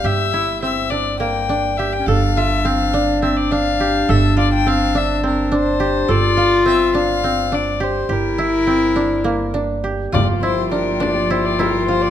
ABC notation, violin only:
X:1
M:7/8
L:1/16
Q:1/4=104
K:Gdor
V:1 name="Violin"
e4 e2 d2 g4 e g | f2 e2 f4 e d f4 | e2 d g f2 e2 B2 c4 | d4 e2 f4 d2 c2 |
B8- B2 z4 | d2 c2 B2 d2 c d B2 c d |]